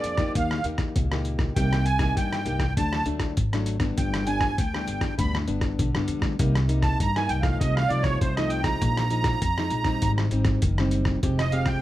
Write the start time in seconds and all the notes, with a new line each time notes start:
Already playing: F3 A#3 D4 G#4 D5
0.04 F2, closed hi-hat
0.17 A#3 D#4 G4, kick, cross-stick, closed hi-hat
0.35 D#2 D#3 F5, kick, closed hi-hat
0.51 cross-stick
0.64 D#2 A#3 D#4 G4, closed hi-hat
0.78 kick, cross-stick, closed hi-hat
0.96 C#2 A#2, kick, closed hi-hat
1.12 A#3 D#4 G4, cross-stick
1.25 closed hi-hat
1.39 kick, cross-stick
1.56 C2 C3 A#3 D#4 G4 G5, kick, closed hi-hat
1.73 cross-stick, closed hi-hat
1.85 G#5, closed hi-hat
1.99 A#3 D#4 G4, kick, cross-stick, closed hi-hat
2.16 G2 G5, kick, closed hi-hat
2.33 cross-stick, closed hi-hat
2.45 C2 A#3 D#4 G4, closed hi-hat
2.59 kick, cross-stick, closed hi-hat
2.76 D2 D3 F#3 A3 D4 A5, kick, closed hi-hat
2.93 cross-stick
3.05 D2 F#3 A3 D4, closed hi-hat
3.20 kick, cross-stick, closed hi-hat
3.37 G#1, kick, closed hi-hat
3.53 F#3 A3 D4, cross-stick, closed hi-hat
3.66 closed hi-hat
3.80 G3 B3 D4, kick, cross-stick, closed hi-hat
3.97 G1 G2 G5, kick, closed hi-hat
4.14 cross-stick, closed hi-hat
4.26 G3 B3 D4 G#5, closed hi-hat
4.41 kick, cross-stick, closed hi-hat
4.58 D2 D3 G5, kick, closed hi-hat
4.74 G3 B3 D4, cross-stick
4.87 G1, closed hi-hat
5.01 kick, cross-stick, closed hi-hat
5.18 D2 G2 G3 B3 D4 B5, kick, closed hi-hat
5.35 cross-stick
5.47 G1 G3 B3 D4, closed hi-hat
5.61 kick, cross-stick, closed hi-hat
5.79 B1 D3, kick, closed hi-hat
5.95 G2 G3 B3 D4, cross-stick
6.08 F2, closed hi-hat
6.19 D2, kick, cross-stick
6.39 C2 C3 G3 A#3 D#4, kick, closed hi-hat
6.55 cross-stick, closed hi-hat
6.68 G3 A#3 D#4, closed hi-hat
6.82 A5, kick, cross-stick, closed hi-hat
7.00 G2 A#5, kick, closed hi-hat
7.16 G3 A#3 D#4 G#5, cross-stick, closed hi-hat
7.29 C2 G5, closed hi-hat
7.42 F3 A3 D#4 F5, kick, cross-stick, closed hi-hat
7.60 C2 C3 D#5, kick, closed hi-hat
7.76 F5, cross-stick
7.88 C2 F3 A3 D#4 D5, closed hi-hat
8.02 C#5, kick, cross-stick, closed hi-hat
8.20 C2 C3 C5, kick, closed hi-hat
8.36 F3 A3 D#4 D#5, cross-stick, closed hi-hat
8.49 G5, closed hi-hat
8.63 F3 G#3 D#4 A#5, kick, cross-stick, closed hi-hat
8.81 A#1 A#2, kick, closed hi-hat
8.97 cross-stick, closed hi-hat
9.10 F3 G#3 D#4, closed hi-hat
9.24 kick, cross-stick, closed hi-hat
9.42 F2, kick, closed hi-hat
9.58 F3 G#3 D#4, cross-stick
9.70 A#1, closed hi-hat
9.84 G3 C4 D#4, kick, cross-stick, closed hi-hat
10.02 G#1 G#2, kick, closed hi-hat
10.18 cross-stick
10.31 G#1 G3 C4 D#4, closed hi-hat
10.45 kick, cross-stick, closed hi-hat
10.62 F#1 D#3, kick, closed hi-hat
10.78 G3 C4 D#4, cross-stick
10.91 closed hi-hat
11.05 kick, cross-stick
11.23 F1 F3 G#3 C4 G4, kick, closed hi-hat
11.39 D#5, cross-stick, closed hi-hat
11.52 G#3 C4 G4 F5, closed hi-hat
11.66 G5, kick, cross-stick, closed hi-hat